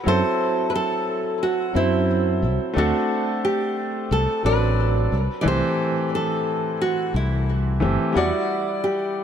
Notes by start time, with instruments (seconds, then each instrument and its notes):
0.04 fretless electric bass F#2, grand piano F#3 C4 E4
0.08 grand piano A4, nylon-string guitar C5
0.70 nylon-string guitar B4
0.75 nylon-string guitar A4
1.43 nylon-string guitar F#4
1.72 fretless electric bass F#2, grand piano F#3 C4 E4, nylon-string guitar E4
1.77 grand piano C5
2.42 fretless electric bass C2
2.74 fretless electric bass D2, grand piano A3 C4 D4
2.78 nylon-string guitar F#4, grand piano A4
3.45 nylon-string guitar G4
4.11 fretless electric bass C2, nylon-string guitar A4
4.43 fretless electric bass A1, grand piano F#3 C4 D4 D5, nylon-string guitar B4
5.12 fretless electric bass C2
5.41 grand piano E3 A3, nylon-string guitar D5
5.45 fretless electric bass C2, grand piano C4 G4, nylon-string guitar C5
6.15 nylon-string guitar A4
6.82 nylon-string guitar F#4
7.14 fretless electric bass C2, nylon-string guitar E4
7.80 fretless electric bass G1, grand piano E3 A3 C4 G4
8.13 fretless electric bass E2, grand piano G3 E4 F#5, nylon-string guitar F#4
8.17 grand piano D5
8.84 nylon-string guitar G4